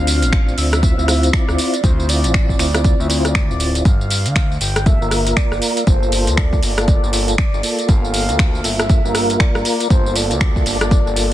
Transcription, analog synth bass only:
0.00 0.24 D2 loud
0.22 0.54 A1 loud
0.58 0.93 D2 medium
0.98 1.30 D2 medium
1.48 1.56 D2 medium
1.84 2.26 D2 loud
2.24 2.56 A1 loud
2.59 2.94 D2 medium
3.00 3.52 D2 medium
3.50 3.82 D1 medium
3.85 4.27 G1 loud
4.26 4.57 D2 loud
4.61 4.96 G1 medium
5.01 5.33 G1 medium
5.52 5.60 G1 medium
5.87 6.29 G1 loud
6.27 6.59 D2 loud
6.63 6.98 G1 medium
7.03 7.35 G1 medium
7.54 7.61 G1 medium
7.89 8.31 G1 loud
8.29 8.61 D2 loud
8.64 8.99 G1 medium
9.05 9.36 G1 medium
9.55 9.63 G1 medium
9.90 10.32 G1 loud
10.31 10.62 D2 loud
10.66 11.01 G1 medium
11.06 11.33 G1 medium

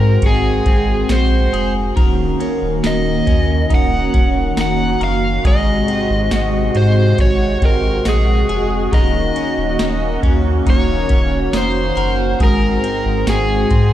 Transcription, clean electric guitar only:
0.00 1.97 G#2 medium
0.00 0.65 C4 medium
0.00 0.22 F#4 medium
0.00 1.52 G#4 medium
0.23 1.09 F#4 medium
0.66 2.05 C4 medium
1.09 2.83 F#4 medium
1.53 1.96 G#4 medium
1.96 5.46 D#3 medium
1.96 4.99 A#4 medium
2.40 3.25 C#4 medium
2.83 3.69 D#4 medium
3.27 4.12 C#4 medium
3.70 4.57 D#4 medium
4.14 5.53 C#4 medium
4.57 6.31 D#4 medium
5.01 5.44 A#4 medium
5.44 8.92 G#2 medium
5.44 8.48 G#4 medium
5.88 6.75 C4 medium
6.32 7.18 F#4 medium
7.19 8.05 F#4 medium
7.62 9.01 C4 medium
8.06 9.79 F#4 medium
8.49 8.92 G#4 medium
8.92 12.40 D#3 medium
8.92 11.96 A#4 medium
9.36 10.22 C#4 medium
9.80 10.66 D#4 medium
10.23 11.09 C#4 medium
10.67 11.53 D#4 medium
11.10 12.49 C#4 medium
11.53 12.49 D#4 medium
11.97 12.40 A#4 medium
12.40 13.93 G#2 medium
12.40 13.93 G#4 medium
12.83 13.69 C4 medium
13.27 13.93 F#4 medium
13.71 13.93 C4 medium

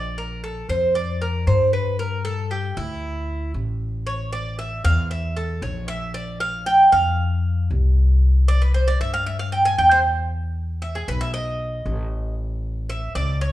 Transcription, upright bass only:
0.00 0.63 A#1 medium
0.69 1.43 F2 medium
1.47 2.70 G2 medium
2.77 3.51 D2 medium
3.54 4.78 A1 medium
4.84 5.58 E2 medium
5.62 6.86 A#1 medium
6.93 7.67 F2 medium
7.70 8.94 C2 medium
9.00 9.74 G2 medium
9.78 11.02 E2 loud
11.08 11.82 B1 medium
11.86 13.09 A1 medium
13.15 13.52 C#2 medium

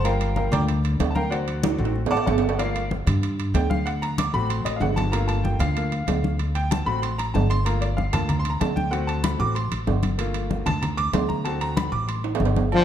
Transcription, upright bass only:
0.00 0.47 G1 medium
0.52 0.97 D2 loud
1.00 1.74 D2 loud
1.78 2.09 A1 loud
2.11 2.26 A1 medium
2.27 3.01 G1 medium
3.07 3.51 G2 loud
3.54 4.28 D2 loud
4.34 4.63 A1 loud
4.65 4.80 A1 medium
4.80 5.54 G1 loud
5.59 6.04 D2 loud
6.07 6.81 D2 medium
6.87 7.31 A1 medium
7.35 8.08 G1 loud
8.13 8.58 D2 loud
8.61 9.34 D2 medium
9.39 9.69 A1 loud
9.72 9.86 A1 medium
9.87 10.61 G1 medium
10.66 11.10 D2 loud
11.13 11.87 D2 medium
11.92 12.37 A1 loud
12.40 12.84 G1 medium

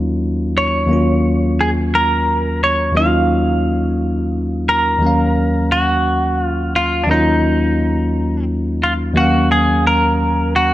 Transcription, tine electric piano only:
0.00 0.83 D#2 medium
0.00 0.84 F#3 medium
0.00 0.84 A#3 medium
0.00 0.85 C#4 medium
0.00 0.86 D#4 medium
0.00 0.86 F4 medium
0.86 2.90 D#2 medium
0.86 2.91 F#3 medium
0.86 2.92 A#3 medium
0.91 2.93 C#4 soft
0.91 2.93 F4 medium
2.92 4.97 D#2 medium
2.92 4.98 F#3 medium
2.92 4.98 A#3 medium
2.97 4.99 C#4 medium
2.97 5.00 D#4 medium
2.97 3.04 E4 soft
3.06 5.03 F4 medium
4.99 7.03 D#2 medium
4.99 7.04 F#3 medium
4.99 7.05 A#3 medium
5.04 7.06 C#4 medium
5.04 7.07 F5 medium
7.06 9.11 D#2 medium
7.06 9.11 F#3 medium
7.06 9.12 A#3 medium
7.11 9.13 C#4 medium
7.11 9.13 D#4 medium
7.11 9.14 F4 medium
9.13 10.74 D#2 medium
9.13 10.74 F#3 medium
9.13 10.74 A#3 medium
9.18 10.74 C#4 medium
9.18 10.74 F5 medium

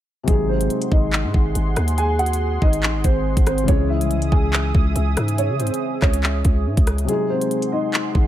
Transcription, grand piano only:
0.28 0.48 G#3 medium
0.28 0.47 G#4 medium
0.49 0.89 C4 medium
0.49 0.89 C5 medium
0.92 1.94 D#4 medium
0.92 1.94 D#5 medium
1.98 2.18 G#4 medium
1.98 2.17 G#5 loud
2.19 2.60 F#4 medium
2.19 2.59 F#5 medium
2.62 3.02 D#4 medium
2.62 3.02 D#5 loud
3.04 3.45 C4 medium
3.04 3.44 C5 medium
3.47 3.67 C4 medium
3.47 3.66 C5 medium
3.68 3.88 C#4 medium
3.68 3.88 C#5 medium
3.89 4.30 E4 medium
3.89 4.29 E5 medium
4.32 5.35 G#4 medium
4.32 5.34 G#5 medium
5.38 5.58 C#4 medium
5.38 5.58 C#5 medium
5.60 6.00 C4 medium
5.60 6.00 C5 medium
6.02 7.05 C#4 medium
6.02 7.05 C#5 medium
7.08 7.28 G#3 medium
7.08 7.28 G#4 medium
7.30 7.70 C4 medium
7.30 7.70 C5 medium
7.72 8.27 D#4 medium
7.72 8.27 D#5 medium

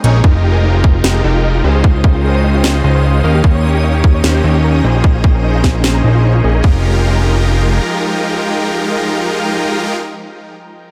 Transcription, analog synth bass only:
0.04 0.22 A#1 medium
0.24 1.02 F1 medium
1.04 1.22 F1 medium
1.24 1.62 F1 medium
1.64 2.82 C#2 medium
2.84 3.22 C#2 medium
3.24 3.42 D#2 medium
3.44 4.22 D#2 medium
4.24 4.42 D#2 medium
4.44 4.82 D#2 medium
4.84 6.02 A#1 medium
6.04 6.42 A#1 medium
6.44 6.62 A#1 medium
6.64 7.80 F1 medium

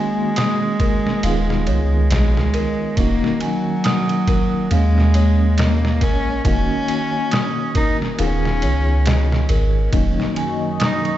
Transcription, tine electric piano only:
0.00 1.16 D#3 medium
0.00 1.17 A#3 medium
0.00 1.17 C#4 medium
0.00 1.18 F#4 medium
1.24 2.90 D#3 medium
1.24 2.91 B3 medium
1.24 2.91 F4 medium
1.24 2.91 G#4 medium
2.97 4.64 D#3 medium
2.97 4.64 A#3 medium
2.97 4.65 C#4 medium
2.97 4.65 F#4 medium
4.71 6.38 G#3 medium
4.71 6.38 A#3 medium
4.71 6.39 C#4 medium
6.45 8.12 D#3 medium
6.45 8.12 A#3 medium
6.45 8.12 C#4 medium
6.45 8.13 F#4 medium
8.19 9.86 D#3 medium
8.19 9.86 B3 medium
8.19 9.86 F4 medium
8.19 9.87 G#4 medium
9.93 11.18 D#3 medium
9.93 11.18 F#3 medium
9.93 11.18 A#3 medium
9.93 11.18 C#4 medium

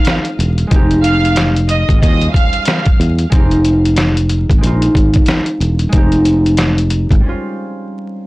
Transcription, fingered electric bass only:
0.39 0.64 E1 medium
0.71 1.85 F1 loud
1.89 1.99 G#1 medium
2.03 2.27 D#2 loud
3.00 3.24 E2 medium
3.32 4.46 F1 loud
4.50 4.59 G#1 medium
4.63 4.87 A#1 loud
4.95 5.20 G#1 medium
5.60 5.85 E1 medium
5.93 7.07 F1 loud
7.11 7.20 G#1 medium

